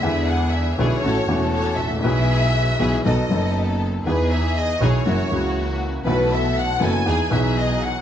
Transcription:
<<
  \new Staff \with { instrumentName = "Violin section" } { \time 4/4 \key e \major \tempo 4 = 120 e''8 fis''8 e''8 cis''4. cis''8 e''8 | e''2 dis''4. r8 | b'8 e''8 dis''8 cis''2 r8 | b'8 e''8 fis''8 gis''4 e''8 dis''8 fis''8 | }
  \new Staff \with { instrumentName = "String section" } { \time 4/4 \key e \major <d' e' gis'>4. <d' e' gis'>8 <cis' fis' a'>8 <cis' fis' a'>4. | <b e' gis'>4. <b e' gis'>8 <b dis' a'>8 <b dis' a'>4. | <dis' gis'>4. <dis' e' gis'>8 <ais e' fis'>8 <ais e' fis'>4. | <b e' a'>4. <b e' a'>8 <dis' e' gis'>8 <dis' gis'>4. | }
  \new Staff \with { instrumentName = "Grand piano" } { \clef bass \time 4/4 \key e \major << { <e, d e gis b e'>4. <b,, b, d gis b e'>8 <a,, a, e a cis' fis'>8 <e,, e, e a cis' fis'>4. | <b,, b, e gis b gis'>4. <b,, b, e gis b gis'>8 <b,, b, fis b dis' a'>8 <fis,, fis, fis b dis' a'>4. | <e, e b dis' gis'>4. <b,, b, e b dis' gis'>8 <fis, e fis ais cis' fis'>8 <cis, cis e ais cis' fis'>4. | <b,, b, e a b fis'>4. <fis,, fis, e a b fis'>8 <e, e b dis' gis'>8 <b,, b, e b dis' gis'>4. | } \\ { r2. r8 r32 gis,,32 a,,32 ais,,32 | r1 | r1 | r1 | } >> }
  \new Staff \with { instrumentName = "Double bass" } { \clef bass \time 4/4 \key e \major e,4. b,,8 a,,8 e,,4 a,,8 | b,,4. b,,8 b,,8 fis,,4. | e,4. b,,8 fis,,8 cis,4. | b,,4. fis,,8 e,8 b,,4. | }
>>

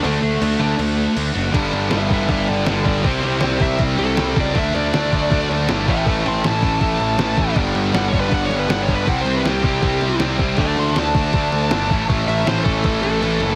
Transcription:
<<
  \new Staff \with { instrumentName = "Lead electric guitar" } { \time 4/4 \key g \lydian \tempo 4 = 159 <a a'>2. r4 | r4 <b' e''>8 <b' e''>8 <b' e''>8 <a' d''>8 <a' d''>8 <a' d''>8 | <g' c''>8 <g' c''>8 <g' c''>8 e''8 r8 a'4 d''8 | e''8 d''2 r4 <e'' g''>8 |
<e'' a''>8 <g'' c'''>8 a''2. | r4 \tuplet 3/2 { fis''8 cis''8 b'8 fis''8 cis''8 b'8 fis''8 cis''8 b'8 } | \tuplet 3/2 { fis''8 c''8 b'8 } g'2 r4 | <e'' a''>8 <a'' c'''>8 a''2. |
r8 e''8 c''8 a'4 a'4. | }
  \new Staff \with { instrumentName = "Distorted electric guitar" } { \time 4/4 \key g \lydian <d a d' fis'>2.~ <d a d' fis'>8 <d a d' fis'>8 | <g, d g b d'>1 | <c g c' e'>1 | <d fis a d'>2.~ <d fis a d'>8 <a, e a cis' e'>8~ |
<a, e a cis' e'>2.~ <a, e a cis' e'>8 r8 | <g, d g b d'>1 | <c g c' e'>1 | <d a d' fis'>2.~ <d a d' fis'>8 <a, e a cis' e'>8~ |
<a, e a cis' e'>2.~ <a, e a cis' e'>8 r8 | }
  \new Staff \with { instrumentName = "Distorted electric guitar" } { \clef bass \time 4/4 \key g \lydian <d a d'>8 r4 <d a d'>8 r2 | <g, d g>4 <g, d g>8 <g, d g>8 <g, d g>4 <g, d g>8 <g, d g>8 | <c g c'>4 <c g c'>8 <c g c'>8 <c g c'>4 <c g c'>8 <c g c'>8 | <d a d'>4 <d a d'>8 <d a d'>8 <d a d'>4 <d a d'>8 <a, e a>8 |
<a, e a>4 <a, e a>8 <a, e a>8 <a, e a>4 <a, e a>8 <a, e a>8 | <g, d g>4 <g, d g>8 <g, d g>8 <g, d g>4 <g, d g>8 <g, d g>8 | <c g c'>4 <c g c'>8 <c g c'>8 <c g c'>4 <c g c'>8 <c g c'>8 | <d a d'>4 <d a d'>8 <d a d'>8 <d a d'>4 <d a d'>8 <a, e a>8 |
<a, e a>4 <a, e a>8 <a, e a>8 <a, e a>4 <a, e a>8 <a, e a>8 | }
  \new Staff \with { instrumentName = "Distorted electric guitar" } { \clef bass \time 4/4 \key g \lydian <d a d'>8 r4 <d a d'>8 r2 | <g, d g>4 <g, d g>8 <g, d g>8 <g, d g>4 <g, d g>8 <g, d g>8 | <c g c'>4 <c g c'>8 <c g c'>8 <c g c'>4 <c g c'>8 <c g c'>8 | <d a d'>4 <d a d'>8 <d a d'>8 <d a d'>4 <d a d'>8 <a, e a>8 |
<a, e a>4 <a, e a>8 <a, e a>8 <a, e a>4 <a, e a>8 <a, e a>8 | <g, d g>4 <g, d g>8 <g, d g>8 <g, d g>4 <g, d g>8 <g, d g>8 | <c g c'>4 <c g c'>8 <c g c'>8 <c g c'>4 <c g c'>8 <c g c'>8 | <d a d'>4 <d a d'>8 <d a d'>8 <d a d'>4 <d a d'>8 <a, e a>8 |
<a, e a>4 <a, e a>8 <a, e a>8 <a, e a>4 <a, e a>8 <a, e a>8 | }
  \new Staff \with { instrumentName = "Picked electric bass" } { \clef bass \time 4/4 \key g \lydian d,8 d,8 d,8 d,8 d,4 d,8 fis,,8 | g,,8 g,,8 g,,8 g,,8 g,,8 g,,8 g,,4 | c,8 c,8 c,8 c,8 c,8 c,8 c,8 cis,8 | d,8 d,8 d,8 d,8 d,8 d,8 g,,8 a,,8 |
a,,8 a,,8 a,,8 a,,8 a,,8 a,,8 a,,8 a,,8 | g,,8 g,,8 g,,8 g,,8 g,,8 g,,8 g,,4 | c,8 c,8 c,8 c,8 c,8 c,8 c,8 c,8 | d,8 d,8 d,8 d,8 d,8 d,8 g,,8 a,,8 |
a,,8 a,,8 a,,8 a,,8 a,,8 a,,8 a,,8 fis,,8 | }
  \new DrumStaff \with { instrumentName = "Drums" } \drummode { \time 4/4 hho4 hho4 hho4 hho4 | <cymc bd>8 cymc8 <cymc sn>8 <cymc bd>8 <cymc bd>8 cymc8 <cymc sn>8 <cymc bd>8 | <cymc bd>8 cymc8 <cymc sn>8 <cymc bd>8 <cymc bd>8 cymc8 <cymc sn>8 <cymc bd>8 | <cymc bd>8 cymc8 <cymc sn>8 <cymc bd>8 <cymc bd>8 cymc8 <cymc sn>8 <cymc bd>8 |
<cymc bd>8 cymc8 <cymc sn>8 <cymc bd>8 <cymc bd>8 cymc8 <cymc sn>8 <cymc bd>8 | <cymc bd>8 cymc8 <cymc sn>8 <cymc bd>8 <cymc bd>8 cymc8 <cymc sn>8 <cymc bd>8 | <cymc bd>8 cymc8 <cymc sn>8 <cymc bd>8 <cymc bd>8 cymc8 <cymc sn>8 <cymc bd>8 | <cymc bd>8 cymc8 <cymc sn>8 <cymc bd>8 <cymc bd>8 cymc8 <cymc sn>8 <cymc bd>8 |
<cymc bd>8 cymc8 <cymc sn>8 <cymc bd>8 <cymc bd>8 cymc8 cymc8 cymc8 | }
>>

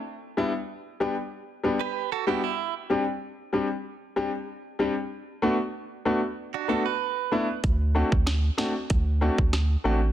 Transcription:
<<
  \new Staff \with { instrumentName = "Clean electric guitar" } { \time 4/4 \key e \minor \tempo 4 = 95 r2 r8. <g' b'>8 <fis' a'>16 <e' g'>16 e'16~ | e'16 r2. r8. | r2 r16 <d' fis'>16 <fis' a'>16 b'4~ b'16 | r1 | }
  \new Staff \with { instrumentName = "Grand piano" } { \time 4/4 \key e \minor r8 <g b d' e'>8 r8 <g b d' g'>8 r8 <g b d' g'>8 r8 <g b d' fis'>8 | r8 <g c' d' g'>8 r8 <g c' d' g'>8 r8 <g c' d' g'>8 r8 <g c' d' g'>8 | r8 <a b d' fis'>8 r8 <a b d' fis'>8 r8 <a b d' fis'>8 r8 <a b d' e'>8 | r8 <a c' d' fis'>8 r8 <a c' d' fis'>8 r8 <a c' d' fis'>8 r8 <a c' d' fis'>8 | }
  \new Staff \with { instrumentName = "Analog synth bass" } { \clef bass \time 4/4 \key e \minor r1 | r1 | r1 | d,8. d,8. r8 d,8. d,8. a,,8 | }
  \new DrumStaff \with { instrumentName = "Drums" } \drummode { \time 4/4 r4 r4 r4 r4 | r4 r4 r4 r4 | r4 r4 r4 r4 | <hh bd>8. bd16 <hh ss sn>8 <ss sn>8 <hh bd>8. bd16 <hh ss sn>4 | }
>>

